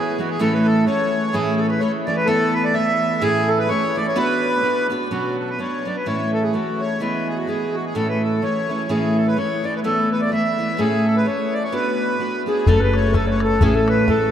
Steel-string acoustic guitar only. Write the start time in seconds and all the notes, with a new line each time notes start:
Already playing: E3 G#3 B3 E4
0.18 E3 G#3 B3 E4
0.39 A2 E3 A3 C#4 E4
0.86 E3 A3 C#4 E4
1.33 A2 E3 A3 C#4 E4
1.81 E3 A3 C#4 E4
2.07 E3 A3 C#4 E4
2.27 E3 A3 B3 E4
2.74 E3 A3 B3 E4
3.21 A2 E3 A3 C#4 E4
3.69 E3 A3 C#4 E4
3.95 E3 A3 C#4 E4
4.16 B3 D4 F#4 B4
4.63 B3 D4 F#4 B4
4.90 B3 D4 F#4 B4
5.11 B2 F#3 B3 C#4 D4
5.58 F#3 B3 C#4 D4
5.85 F#3 B3 C#4 D4
6.06 A2 E3 A3 C#4 E4
6.53 E3 A3 C#4 E4
7.00 E3 G#3 B3 E4
7.47 E3 G#3 B3 E4
7.95 A2 E3 A3 C#4 E4
8.42 E3 A3 C#4 E4
8.69 E3 A3 C#4 E4
8.89 A2 E3 A3 C#4 E4
9.36 E3 A3 C#4 E4
9.63 E3 A3 C#4 E4
9.84 E3 A3 B3 E4
10.31 E3 A3 B3 E4
10.58 E3 A3 B3 E4
10.78 A2 A3 C#4 E4 A4
11.26 A3 C#4 E4 A4
11.72 B3 D4 F#4 B4
12.19 B3 D4 F#4 B4
12.46 B3 D4 F#4 B4
12.67 F#3 A3 C#4 A4
13.13 F#3 A3 C#4 A4
13.61 A2 A3 C#4 E4 A4
14.08 A3 C#4 E4 A4